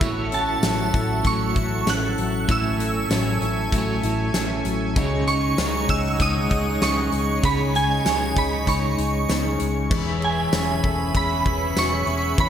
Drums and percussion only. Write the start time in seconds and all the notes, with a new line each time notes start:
0.01 kick, closed hi-hat
0.32 closed hi-hat
0.63 snare, closed hi-hat, tambourine
0.94 kick, closed hi-hat
1.25 kick, closed hi-hat
1.56 kick, closed hi-hat
1.87 snare, closed hi-hat, tambourine
2.18 closed hi-hat
2.49 kick, closed hi-hat
2.80 closed hi-hat
3.10 snare, closed hi-hat, tambourine
3.42 closed hi-hat
3.72 kick, closed hi-hat
4.03 closed hi-hat
4.34 snare, closed hi-hat, tambourine
4.65 closed hi-hat
4.96 kick, closed hi-hat
5.27 closed hi-hat
5.58 snare, closed hi-hat, tambourine
5.89 kick, closed hi-hat
6.20 kick, closed hi-hat
6.51 kick, closed hi-hat
6.82 snare, closed hi-hat, tambourine
7.12 closed hi-hat
7.44 kick, closed hi-hat
7.75 closed hi-hat
8.05 snare, closed hi-hat, tambourine
8.37 kick, closed hi-hat
8.67 kick, closed hi-hat
8.98 closed hi-hat
9.29 snare, closed hi-hat, tambourine
9.59 closed hi-hat
9.91 kick, crash
10.22 ride
10.52 snare, ride, tambourine
10.84 kick, ride
11.15 kick, ride
11.46 kick, ride
11.77 snare, ride, tambourine
12.07 ride
12.38 kick, ride